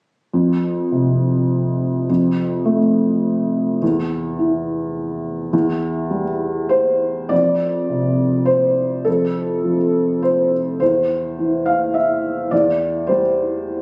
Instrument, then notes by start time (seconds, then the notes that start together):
felt piano
0.33 F2
0.92 C3
2.10 F2
2.65 A3
3.82 E2
4.39 E3
5.53 E2
6.11 G3
6.69 C5
7.29 F2 D5
7.89 C3
8.45 C5
9.05 F2 A4
9.64 F3
10.22 C5
10.80 E2 C5
11.39 E3
11.66 F5
11.94 E5
12.51 E2 D5
13.07 G3 C5